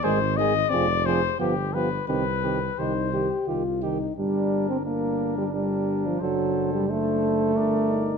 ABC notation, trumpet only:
X:1
M:3/4
L:1/8
Q:1/4=88
K:Cm
V:1 name="Trumpet"
c e d c G =B | =B2 c2 z2 | [K:Gm] B2 B2 B2 | c2 c2 d2 |]